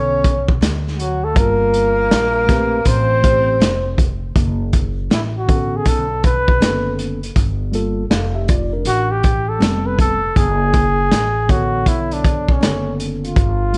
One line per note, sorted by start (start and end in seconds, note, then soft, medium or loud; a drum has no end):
0.00 0.57 B1 loud
0.00 0.33 D3 medium
0.00 0.33 B3 medium
0.00 0.34 C#4 medium
0.00 0.56 C#4 medium
0.00 0.34 A4 medium
0.00 0.56 C#5 medium
0.24 kick loud
0.24 closed hi-hat medium
0.48 kick loud
0.61 1.32 D2 medium
0.61 snare loud
0.61 closed hi-hat loud
0.87 snare soft
0.99 1.26 F#3 medium
0.99 1.26 F#4 medium
0.99 closed hi-hat medium
1.24 1.36 A3 medium
1.24 1.39 A4 medium
1.35 2.07 G1 loud
1.35 2.43 G3 medium
1.35 2.88 A#3 medium
1.35 2.43 A#3 medium
1.35 2.44 F4 medium
1.35 2.89 A#4 loud
1.35 2.45 A#4 medium
1.35 kick loud
1.35 closed hi-hat medium
1.74 closed hi-hat medium
2.11 2.82 A#1 medium
2.11 snare loud
2.11 closed hi-hat medium
2.47 2.77 A3 medium
2.47 2.78 C4 medium
2.47 2.79 G4 medium
2.47 2.79 B4 loud
2.47 kick medium
2.47 snare soft
2.47 closed hi-hat medium
2.85 3.57 A1 loud
2.85 3.99 C4 loud
2.85 3.99 C5 loud
2.85 kick medium
2.85 closed hi-hat medium
3.22 3.70 A3 medium
3.22 3.71 C4 medium
3.22 3.71 G4 medium
3.22 3.72 C5 medium
3.22 kick medium
3.22 closed hi-hat medium
3.60 4.32 F1 medium
3.60 snare loud
3.60 closed hi-hat loud
3.98 kick medium
3.98 closed hi-hat medium
4.36 5.07 F#1 medium
4.36 kick medium
4.36 closed hi-hat medium
4.73 kick medium
4.73 closed hi-hat medium
5.10 5.82 A1 medium
5.10 5.23 E4 medium
5.10 snare loud
5.10 closed hi-hat medium
5.38 5.78 F#4 medium
5.47 6.05 D3 medium
5.47 6.05 B3 medium
5.47 6.06 C#4 medium
5.47 6.06 A4 medium
5.47 kick medium
5.47 closed hi-hat medium
5.77 5.90 G#4 medium
5.85 6.57 B1 loud
5.85 6.25 A4 loud
5.85 kick medium
5.85 closed hi-hat medium
6.24 6.95 B4 loud
6.24 kick medium
6.24 closed hi-hat medium
6.48 kick loud
6.60 7.32 F#1 medium
6.60 7.18 D3 medium
6.60 7.18 B3 medium
6.60 7.19 C#4 medium
6.60 7.19 A4 medium
6.60 snare loud
6.60 closed hi-hat loud
6.99 closed hi-hat medium
7.23 closed hi-hat medium
7.36 8.07 G1 medium
7.36 kick medium
7.36 closed hi-hat medium
7.72 8.02 G3 medium
7.72 8.03 A#3 medium
7.72 8.04 F4 medium
7.72 8.04 A4 medium
7.72 closed hi-hat medium
8.11 8.82 F1 medium
8.11 8.35 A4 medium
8.11 8.34 F5 medium
8.11 snare loud
8.11 closed hi-hat medium
8.35 8.48 G4 medium
8.35 8.48 E5 medium
8.48 8.72 F4 medium
8.48 8.72 D5 medium
8.48 kick medium
8.48 closed hi-hat medium
8.73 9.09 D4 medium
8.73 9.09 A#4 medium
8.85 9.57 A1 loud
8.85 9.13 F#4 loud
8.85 closed hi-hat medium
9.11 9.51 G4 medium
9.23 kick medium
9.23 closed hi-hat medium
9.49 9.88 A4 medium
9.59 10.32 F1 loud
9.59 10.17 G3 medium
9.59 10.18 B3 medium
9.59 10.18 C4 medium
9.59 10.19 A4 medium
9.59 snare loud
9.59 closed hi-hat loud
9.87 9.99 B4 medium
9.99 10.39 A4 loud
9.99 kick medium
9.99 closed hi-hat medium
10.36 11.07 F#1 loud
10.36 11.52 G#4 loud
10.36 kick medium
10.36 closed hi-hat medium
10.73 kick medium
10.73 closed hi-hat medium
11.11 11.86 A1 medium
11.11 snare loud
11.11 closed hi-hat medium
11.48 12.55 D3 medium
11.48 12.56 B3 medium
11.48 11.90 F#4 loud
11.48 12.57 A4 medium
11.48 12.57 C#5 medium
11.48 kick medium
11.48 closed hi-hat medium
11.86 12.57 B1 loud
11.86 12.15 E4 medium
11.86 kick medium
11.86 closed hi-hat medium
12.11 12.53 D4 medium
12.11 closed hi-hat medium
12.24 kick medium
12.24 closed hi-hat medium
12.48 12.94 C#4 medium
12.48 kick medium
12.60 13.32 F#1 medium
12.60 12.69 C#3 medium
12.60 13.36 B3 medium
12.60 13.37 C#4 medium
12.60 13.37 A4 medium
12.60 snare loud
12.60 closed hi-hat loud
12.66 13.39 D3 medium
13.00 closed hi-hat medium
13.24 13.78 F4 medium
13.24 closed hi-hat soft
13.36 13.78 G1 loud
13.36 kick loud
13.36 closed hi-hat medium
13.73 13.78 G3 medium
13.73 13.78 A#3 medium
13.73 closed hi-hat medium